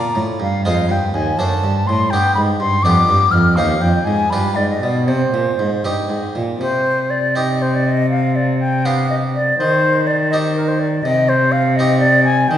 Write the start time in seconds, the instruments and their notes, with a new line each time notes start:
Already playing: harpsichord A#2 F4 D5, flute A#5
0.15 harpsichord A2, cello A2
0.40 harpsichord G2, cello G2, flute F5
0.65 harpsichord F2 G#3 F4 C5, cello F2, flute F5
0.89 cello G2, harpsichord G2, flute G5
1.13 cello D#2, harpsichord D#2, flute G#5
1.37 cello F#2, harpsichord F#2 A3 D4 C5, flute A5
1.62 cello G2, harpsichord G2
1.87 cello A2, harpsichord A2, flute C6
2.10 cello G2, harpsichord G2 B3 D4 G4, flute G5
2.35 cello G#2, harpsichord G#2, flute B5
2.59 cello G2, harpsichord G2, flute C6
2.83 cello F2, harpsichord F2 B3 D4 G4, flute D6
3.07 cello G2, harpsichord G2
3.31 cello F2, harpsichord F2, flute F6
3.56 cello D#2, harpsichord D#2 C4 D#4 G4, flute F5
3.81 cello F2, harpsichord F2, flute G5
4.05 cello G#2, harpsichord G#2, flute G#5
4.30 cello G2, harpsichord G2 D4 F4 G4, flute B5
4.55 cello G#2, harpsichord G#2, flute D5
4.70 flute D#5
4.81 cello B2, harpsichord B2, flute D5
5.06 cello C3, harpsichord C3, flute C5
5.32 cello A#2, harpsichord A#2
5.58 cello G#2, harpsichord G#2
5.84 cello G2, harpsichord G2 C4 D#4 G4
6.09 cello G#2, harpsichord G#2
6.35 cello A#2, harpsichord A#2
6.61 harpsichord C3, cello C3, flute C5
7.10 flute D5
7.35 harpsichord C4 D#4 G4, flute D#5
7.62 flute C5
7.75 flute D5
7.87 flute D#5
8.11 flute F5
8.36 flute D5
8.59 flute G5
8.85 harpsichord B3 D4 G4, flute F5
9.10 flute D#5
9.35 flute D5
9.58 cello D#3, harpsichord D#3, flute C5
10.07 flute D5
10.30 harpsichord C4 D#4 G4, flute D#5
10.55 flute A#4
10.68 flute C5
10.80 flute D5
11.03 cello C3, harpsichord C3, flute D#5
11.29 flute C5
11.52 flute F5
11.76 harpsichord C4, flute D#5
11.80 harpsichord D#4 G4
11.99 flute D5
12.24 flute G#5
12.48 cello D#3, harpsichord D#3, flute G5